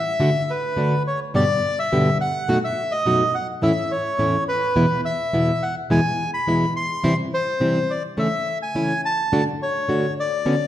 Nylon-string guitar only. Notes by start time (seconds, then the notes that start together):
0.20 D3 A3 D4 F#4
0.77 D3 A3 D4 F#4
1.34 G2 B2 D3 G3 B3 G4
1.92 G2 B2 D3 G3 B3 G4
2.48 F#2 B2 F#3 A3 D#4 F#4
3.06 F#2 B2 F#3 A3 D#4 F#4
3.62 E2 A2 E3 A3 C#4 E4
4.18 E2 A2 E3 A3 C#4 E4
4.76 E2 B2 E3 G#3 B3 E4
5.33 E2 B2 E3 G#3 B3 E4
5.90 E2 B2 E3 G#3 B3 E4
6.47 E2 B2 E3 G#3 B3 E4
7.03 C3 E3 G3 C4 E4
7.60 C3 E3 G3 C4 E4
8.17 C#3 E3 A3 C#4 E4
8.75 C#3 E3 A3 C#4 E4
9.32 D3 A3 D4 F#4
9.88 D3 A3 D4 F#4
10.46 D3 B3 C#4 F#4